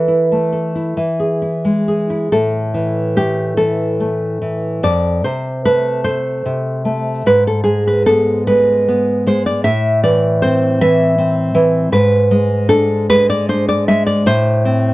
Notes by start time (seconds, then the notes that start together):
Already playing: E3 A4 B4
0.08 E4
0.32 A3
0.53 A4
0.75 E4
0.97 E3
1.20 G#4
1.42 E4
1.65 G#3
1.88 G#4
2.10 E4
2.32 A2 A4
2.74 E3
3.16 A3 G4
3.57 E3 A4
4.00 A3
4.42 E3
4.83 F2 D5
5.24 C3 C5
5.65 A3 B4
6.04 A4 C5
6.46 C3
6.85 A3
7.26 G#2 B4
7.47 A4
7.64 G#3 G#4
7.87 B4
8.06 B3 A4
8.47 G#3 B4
8.88 B3
9.27 G#3 C5
9.46 D5
9.64 A2 E5
10.03 E3 D5
10.42 C4 C5
10.81 E3 E5
11.18 C4
11.55 E3
11.92 G#2 B4
12.31 G#3
12.69 D4 A4
13.10 G#3 B4
13.30 D5
13.49 D4 C5
13.69 D5
13.88 G#3 E5
14.06 D5
14.26 A2 C5
14.65 C4